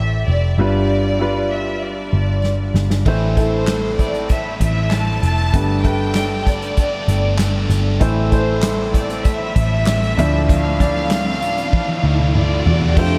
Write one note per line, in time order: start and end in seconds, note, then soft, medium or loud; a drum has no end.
0.00 0.24 A1 medium
0.00 0.61 A2 medium
0.00 0.61 E3 medium
0.00 0.60 A3 medium
0.00 0.61 G4 medium
0.00 0.60 C5 medium
0.00 0.60 D5 medium
0.00 0.28 E5 medium
0.28 0.56 F1 medium
0.28 0.56 D5 medium
0.58 2.09 G1 medium
0.58 1.48 G2 medium
0.58 1.48 D3 medium
0.58 1.06 G3 medium
0.58 1.07 F4 medium
0.58 1.07 B4 medium
0.58 1.48 D5 medium
1.19 2.16 G3 medium
1.19 2.17 F4 medium
1.19 2.17 B4 medium
1.51 1.82 E5 medium
1.81 2.75 D5 medium
2.13 2.71 G1 medium
2.44 snare soft
2.74 3.04 G1 medium
2.74 snare medium
2.90 snare medium
3.05 4.57 A1 medium
3.05 3.37 A2 medium
3.05 3.96 A2 medium
3.05 3.37 E3 medium
3.05 3.96 E3 medium
3.05 3.30 A3 medium
3.05 3.37 A3 medium
3.05 3.38 C4 medium
3.05 3.31 E4 medium
3.05 3.37 E4 medium
3.05 3.36 A4 medium
3.05 3.31 C5 medium
3.05 kick loud
3.05 crash medium
3.37 4.33 A3 medium
3.37 3.66 A3 soft
3.37 3.68 C4 soft
3.37 4.34 E4 medium
3.37 3.69 E4 soft
3.37 3.68 A4 medium
3.37 4.34 A4 medium
3.37 3.95 C5 medium
3.37 kick medium
3.37 closed hi-hat medium
3.67 3.99 A3 medium
3.67 3.99 C4 medium
3.67 3.99 E4 medium
3.67 snare medium
3.67 clap medium
3.67 closed hi-hat medium
3.71 3.98 A4 medium
3.99 4.30 A3 soft
3.99 4.31 C4 soft
3.99 4.31 E4 medium
3.99 4.30 A4 soft
3.99 4.30 D5 medium
3.99 kick medium
3.99 closed hi-hat medium
4.14 closed hi-hat soft
4.29 4.61 A2 medium
4.29 4.61 E3 medium
4.29 4.62 A3 medium
4.29 4.62 C4 medium
4.29 4.61 E4 medium
4.29 4.59 A4 medium
4.29 4.60 E5 medium
4.29 kick medium
4.29 closed hi-hat medium
4.61 5.19 A1 medium
4.61 4.90 A3 soft
4.61 4.92 C4 soft
4.61 4.93 E4 soft
4.61 4.92 A4 soft
4.61 4.90 E5 medium
4.61 kick medium
4.61 closed hi-hat medium
4.91 5.23 A3 medium
4.91 5.23 C4 medium
4.91 5.23 E4 medium
4.91 5.23 A5 medium
4.91 snare loud
4.91 clap medium
4.91 closed hi-hat medium
4.95 5.21 A4 medium
5.23 5.52 F1 medium
5.23 5.54 A3 soft
5.23 5.55 C4 soft
5.23 5.54 E4 medium
5.23 5.54 A4 soft
5.23 5.82 A5 loud
5.23 closed hi-hat medium
5.53 7.05 G1 medium
5.53 5.85 G2 medium
5.53 6.43 G2 medium
5.53 5.85 D3 medium
5.53 6.43 D3 medium
5.53 5.78 A3 medium
5.53 5.85 A3 medium
5.53 5.86 B3 medium
5.53 5.84 D4 medium
5.53 5.78 G4 medium
5.53 5.83 A4 medium
5.53 5.79 B4 medium
5.53 kick loud
5.53 closed hi-hat medium
5.84 6.80 A3 medium
5.84 6.15 B3 medium
5.84 6.16 D4 medium
5.84 6.81 G4 medium
5.84 6.15 A4 soft
5.84 6.82 B4 medium
5.84 6.47 G5 medium
5.84 kick medium
5.84 closed hi-hat medium
5.88 6.14 A3 soft
6.15 6.47 A3 medium
6.15 6.47 B3 medium
6.15 6.46 D4 medium
6.15 snare loud
6.15 clap medium
6.15 closed hi-hat medium
6.19 6.44 A4 medium
6.45 6.77 A3 soft
6.45 6.78 B3 soft
6.45 6.78 D4 soft
6.45 6.77 A4 medium
6.45 7.71 D5 medium
6.45 kick medium
6.45 closed hi-hat medium
6.62 closed hi-hat soft
6.77 7.08 G2 medium
6.77 7.09 D3 medium
6.77 7.09 A3 medium
6.77 7.09 B3 medium
6.77 7.08 D4 medium
6.77 7.07 A4 medium
6.77 kick medium
6.77 closed hi-hat medium
7.08 7.66 G1 medium
7.08 7.37 A3 soft
7.08 7.39 B3 soft
7.08 7.40 D4 medium
7.08 7.39 A4 medium
7.08 closed hi-hat medium
7.38 7.70 A3 medium
7.38 7.71 B3 medium
7.38 7.69 D4 medium
7.38 7.68 A4 medium
7.38 snare loud
7.38 clap medium
7.38 closed hi-hat medium
7.70 7.99 G1 medium
7.70 8.00 A3 soft
7.70 8.02 B3 soft
7.70 8.02 D4 medium
7.70 8.01 A4 medium
7.70 snare soft
7.70 closed hi-hat medium
8.00 9.52 A1 medium
8.00 8.32 A2 medium
8.00 8.90 A2 medium
8.00 8.32 E3 medium
8.00 8.90 E3 medium
8.00 8.25 A3 medium
8.00 8.32 A3 medium
8.00 8.32 C4 medium
8.00 8.25 E4 medium
8.00 8.31 E4 medium
8.00 8.29 A4 medium
8.00 8.26 C5 medium
8.00 kick loud
8.00 closed hi-hat medium
8.00 riser medium
8.31 9.28 A3 medium
8.31 8.60 A3 medium
8.31 8.62 C4 medium
8.31 9.28 E4 medium
8.31 8.62 E4 medium
8.31 8.62 A4 medium
8.31 8.90 C5 medium
8.31 9.29 C5 medium
8.31 kick medium
8.31 closed hi-hat medium
8.61 8.93 A3 medium
8.61 8.93 C4 medium
8.61 8.92 E4 medium
8.61 8.91 A4 medium
8.61 snare loud
8.61 clap medium
8.61 closed hi-hat medium
8.92 9.24 A3 soft
8.92 9.25 C4 soft
8.92 9.25 E4 soft
8.92 9.24 A4 medium
8.92 9.25 D5 medium
8.92 kick medium
8.92 closed hi-hat medium
9.10 closed hi-hat soft
9.25 9.56 A2 medium
9.25 9.56 E3 medium
9.25 9.56 A3 medium
9.25 9.57 C4 medium
9.25 9.56 E4 medium
9.25 9.54 A4 loud
9.25 10.49 E5 medium
9.25 kick medium
9.25 closed hi-hat medium
9.55 10.14 A1 medium
9.55 9.84 A3 soft
9.55 9.86 C4 soft
9.55 9.87 E4 medium
9.55 9.87 A4 medium
9.55 kick medium
9.55 closed hi-hat medium
9.85 10.17 A3 medium
9.85 10.18 C4 medium
9.85 10.17 E4 medium
9.85 10.15 A4 medium
9.85 snare loud
9.85 clap medium
9.85 closed hi-hat medium
10.03 closed hi-hat soft
10.17 12.00 D2 medium
10.17 11.07 A2 medium
10.17 10.68 F3 medium
10.17 10.67 D4 medium
10.17 10.48 D4 soft
10.17 10.49 E4 soft
10.17 10.48 A4 medium
10.17 10.68 E5 loud
10.17 closed hi-hat medium
10.48 10.79 D3 medium
10.48 10.80 F3 medium
10.48 10.80 D4 medium
10.48 10.80 E4 medium
10.48 10.78 A4 medium
10.48 12.35 F5 loud
10.48 kick loud
10.48 closed hi-hat loud
10.79 11.76 F3 medium
10.79 11.76 D4 medium
10.79 11.10 D4 soft
10.79 11.11 E4 medium
10.79 11.10 A4 medium
10.79 11.76 D5 medium
10.79 kick medium
10.79 closed hi-hat medium
11.10 11.41 F3 medium
11.10 11.42 D4 medium
11.10 11.41 E4 medium
11.10 11.39 A4 medium
11.10 snare loud
11.10 clap medium
11.10 closed hi-hat medium
11.41 11.72 D4 soft
11.41 11.73 E4 soft
11.41 11.72 A4 medium
11.41 closed hi-hat medium
11.58 closed hi-hat medium
11.72 12.03 D3 medium
11.72 12.04 F3 medium
11.72 12.04 D4 medium
11.72 12.03 E4 medium
11.72 12.01 A4 medium
11.72 kick medium
11.72 high tom soft
11.89 high tom medium
12.02 12.62 D2 loud
12.02 12.33 D4 soft
12.02 12.34 E4 medium
12.02 12.34 A4 medium
12.20 mid tom medium
12.33 12.65 F3 medium
12.33 12.65 D4 medium
12.33 12.65 E4 medium
12.33 12.63 A4 medium
12.33 12.93 D5 medium
12.33 mid tom medium
12.65 12.95 E2 medium
12.65 12.96 D4 soft
12.65 12.96 E4 soft
12.65 12.96 A4 medium
12.65 floor tom medium
12.81 floor tom medium
12.95 13.19 F2 medium
12.95 13.19 C3 medium
12.95 13.19 D3 medium
12.95 13.19 F3 medium
12.95 13.19 A3 medium
12.95 13.19 C4 medium
12.95 13.19 D4 medium
12.95 13.19 F4 medium
12.95 13.19 A4 medium
12.95 13.19 C5 medium
12.95 13.19 G5 medium
12.95 kick loud
12.95 crash loud